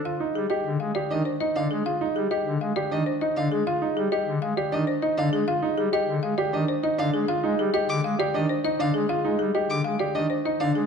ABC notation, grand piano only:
X:1
M:6/4
L:1/8
Q:1/4=199
K:Fdor
V:1 name="Grand piano"
F E z G z2 G D z E D z | F E z G z2 G D z E D z | F E z G z2 G D z E D z | F E z G z2 G D z E D z |
F E z G z2 G D z E D z | F E z G z2 G D z E D z |]